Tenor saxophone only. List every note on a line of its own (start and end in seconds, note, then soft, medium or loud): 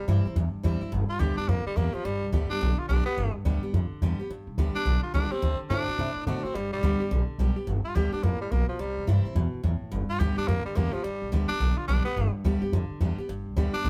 1.09 1.22 F4 loud
1.20 1.37 G4 medium
1.37 1.50 D4 loud
1.49 1.66 A#3 loud
1.66 1.78 G3 medium
1.77 1.95 A#3 medium
1.94 2.06 F3 medium
2.05 2.32 G3 loud
2.50 2.80 D4 loud
2.79 2.88 F4 medium
2.89 3.05 D4 loud
3.06 3.33 B3 loud
4.75 5.03 D4 loud
5.03 5.14 F4 medium
5.14 5.33 D4 loud
5.32 5.59 C4 loud
5.70 6.25 D4 loud
6.27 6.46 D4 medium
6.44 6.57 C4 medium
6.55 6.72 G3 loud
6.73 7.27 G3 loud
7.85 7.97 F4 loud
7.96 8.12 G4 medium
8.13 8.25 D4 medium
8.23 8.40 A#3 medium
8.41 8.53 G3 medium
8.51 8.68 A#3 medium
8.69 8.82 F3 medium
8.80 9.07 G3 medium
10.10 10.21 F4 loud
10.20 10.37 G4 medium
10.38 10.49 D4 loud
10.48 10.65 A#3 loud
10.65 10.78 G3 medium
10.76 10.94 A#3 loud
10.93 11.05 F3 medium
11.04 11.31 G3 loud
11.48 11.79 D4 loud
11.77 11.87 F4 medium
11.88 12.04 D4 loud
12.05 12.33 B3 medium
13.74 13.90 D4 loud